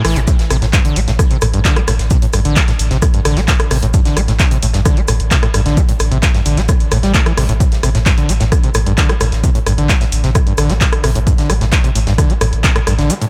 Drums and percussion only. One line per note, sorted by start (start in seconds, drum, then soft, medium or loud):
0.05 cross-stick loud
0.05 open hi-hat medium
0.16 closed hi-hat soft
0.16 closed hi-hat medium
0.27 kick loud
0.27 closed hi-hat medium
0.27 shaker loud
0.39 snare soft
0.39 closed hi-hat medium
0.50 cross-stick medium
0.50 open hi-hat loud
0.50 shaker medium
0.62 snare soft
0.62 closed hi-hat medium
0.73 kick loud
0.73 snare loud
0.73 clap loud
0.73 closed hi-hat medium
0.73 shaker loud
0.85 closed hi-hat medium
0.85 closed hi-hat soft
0.96 open hi-hat loud
0.96 shaker medium
1.08 snare medium
1.08 closed hi-hat medium
1.19 kick loud
1.19 cross-stick medium
1.19 closed hi-hat medium
1.19 shaker loud
1.31 closed hi-hat medium
1.41 cross-stick loud
1.41 open hi-hat loud
1.41 shaker medium
1.54 closed hi-hat medium
1.65 kick loud
1.65 snare loud
1.65 clap loud
1.65 closed hi-hat medium
1.65 shaker medium
1.76 cross-stick medium
1.76 closed hi-hat medium
1.88 cross-stick medium
1.88 open hi-hat loud
1.88 shaker medium
1.99 snare soft
1.99 closed hi-hat medium
2.10 kick loud
2.10 closed hi-hat medium
2.10 shaker medium
2.22 closed hi-hat soft
2.22 closed hi-hat medium
2.33 cross-stick medium
2.33 open hi-hat loud
2.33 shaker medium
2.45 closed hi-hat medium
2.56 kick loud
2.56 snare loud
2.56 clap loud
2.56 closed hi-hat medium
2.56 shaker medium
2.68 snare soft
2.68 closed hi-hat medium
2.79 open hi-hat loud
2.79 shaker medium
2.91 snare soft
2.91 closed hi-hat medium
3.02 kick loud
3.02 cross-stick medium
3.02 closed hi-hat medium
3.02 shaker loud
3.14 closed hi-hat medium
3.25 cross-stick medium
3.25 open hi-hat loud
3.25 shaker medium
3.37 snare soft
3.37 closed hi-hat medium
3.48 kick loud
3.48 snare loud
3.48 clap loud
3.48 closed hi-hat medium
3.48 shaker medium
3.60 cross-stick loud
3.60 closed hi-hat medium
3.71 cross-stick medium
3.71 open hi-hat medium
3.83 closed hi-hat medium
3.83 closed hi-hat soft
3.94 kick loud
3.94 closed hi-hat medium
3.94 shaker medium
4.05 snare soft
4.05 closed hi-hat medium
4.17 cross-stick medium
4.17 open hi-hat loud
4.17 shaker medium
4.28 snare soft
4.28 closed hi-hat medium
4.39 kick loud
4.39 snare loud
4.39 clap loud
4.39 closed hi-hat medium
4.39 shaker medium
4.51 closed hi-hat medium
4.63 open hi-hat loud
4.63 shaker medium
4.74 snare medium
4.74 closed hi-hat medium
4.85 kick loud
4.85 cross-stick medium
4.85 closed hi-hat medium
4.85 shaker loud
4.97 closed hi-hat medium
5.08 cross-stick medium
5.08 open hi-hat loud
5.08 shaker medium
5.20 closed hi-hat medium
5.31 kick loud
5.31 snare loud
5.31 clap loud
5.31 closed hi-hat medium
5.31 shaker medium
5.43 cross-stick medium
5.43 closed hi-hat medium
5.54 cross-stick medium
5.54 open hi-hat loud
5.54 shaker medium
5.66 snare soft
5.66 closed hi-hat medium
5.77 kick loud
5.77 closed hi-hat medium
5.77 shaker medium
5.89 closed hi-hat soft
5.89 closed hi-hat medium
5.99 cross-stick medium
5.99 open hi-hat loud
5.99 shaker medium
6.12 closed hi-hat medium
6.22 kick loud
6.22 snare loud
6.22 clap loud
6.22 closed hi-hat medium
6.22 shaker medium
6.35 snare soft
6.35 closed hi-hat medium
6.46 open hi-hat loud
6.46 shaker medium
6.57 snare soft
6.57 closed hi-hat medium
6.69 kick loud
6.69 cross-stick medium
6.69 closed hi-hat medium
6.69 shaker loud
6.80 closed hi-hat soft
6.91 cross-stick medium
6.91 open hi-hat loud
6.91 shaker medium
7.03 snare soft
7.03 closed hi-hat medium
7.14 kick loud
7.14 snare loud
7.14 clap loud
7.14 closed hi-hat medium
7.14 shaker medium
7.26 cross-stick medium
7.26 closed hi-hat medium
7.37 cross-stick medium
7.37 open hi-hat medium
7.49 closed hi-hat soft
7.60 kick loud
7.60 closed hi-hat medium
7.60 shaker medium
7.72 snare soft
7.72 closed hi-hat soft
7.83 cross-stick medium
7.83 open hi-hat loud
7.83 shaker medium
7.95 snare soft
7.95 closed hi-hat medium
8.06 kick loud
8.06 snare loud
8.06 clap loud
8.06 closed hi-hat medium
8.06 shaker medium
8.18 closed hi-hat soft
8.18 closed hi-hat medium
8.29 open hi-hat loud
8.29 shaker medium
8.40 snare medium
8.40 closed hi-hat medium
8.52 kick loud
8.52 cross-stick medium
8.52 closed hi-hat medium
8.52 shaker medium
8.63 closed hi-hat medium
8.74 cross-stick loud
8.74 open hi-hat loud
8.74 shaker medium
8.86 closed hi-hat medium
8.98 kick loud
8.98 snare loud
8.98 clap loud
8.98 closed hi-hat medium
8.98 shaker medium
9.09 cross-stick loud
9.09 closed hi-hat medium
9.21 cross-stick loud
9.21 open hi-hat medium
9.21 shaker medium
9.32 snare soft
9.32 closed hi-hat medium
9.44 kick loud
9.44 closed hi-hat medium
9.44 shaker medium
9.55 closed hi-hat soft
9.66 cross-stick medium
9.66 open hi-hat loud
9.66 shaker medium
9.78 closed hi-hat medium
9.89 kick loud
9.89 snare loud
9.89 clap loud
9.89 closed hi-hat medium
9.89 shaker medium
10.01 snare soft
10.01 closed hi-hat medium
10.12 open hi-hat medium
10.12 shaker medium
10.24 snare soft
10.24 closed hi-hat soft
10.35 kick loud
10.35 cross-stick loud
10.35 closed hi-hat medium
10.35 shaker loud
10.47 closed hi-hat soft
10.58 cross-stick loud
10.58 open hi-hat loud
10.58 shaker medium
10.69 snare soft
10.69 closed hi-hat medium
10.81 kick loud
10.81 snare loud
10.81 clap loud
10.81 closed hi-hat medium
10.81 shaker medium
10.93 cross-stick loud
10.93 closed hi-hat medium
11.04 cross-stick loud
11.04 open hi-hat medium
11.15 closed hi-hat medium
11.27 kick loud
11.27 closed hi-hat medium
11.27 shaker medium
11.38 snare soft
11.38 closed hi-hat medium
11.50 cross-stick medium
11.50 open hi-hat loud
11.50 shaker medium
11.61 snare soft
11.61 closed hi-hat medium
11.72 kick loud
11.72 snare loud
11.72 clap loud
11.72 closed hi-hat medium
11.72 shaker medium
11.84 closed hi-hat medium
11.84 closed hi-hat soft
11.95 open hi-hat medium
11.95 shaker medium
12.07 snare medium
12.07 closed hi-hat medium
12.18 kick loud
12.18 cross-stick medium
12.18 closed hi-hat medium
12.18 shaker medium
12.30 closed hi-hat soft
12.41 cross-stick loud
12.41 open hi-hat loud
12.41 shaker medium
12.53 closed hi-hat medium
12.63 kick loud
12.63 snare loud
12.63 clap loud
12.63 closed hi-hat medium
12.63 shaker medium
12.76 cross-stick loud
12.76 closed hi-hat medium
12.87 cross-stick loud
12.87 open hi-hat medium
12.87 shaker medium
12.99 snare soft
12.99 closed hi-hat medium
13.10 closed hi-hat medium
13.10 shaker medium
13.22 closed hi-hat medium
13.22 closed hi-hat soft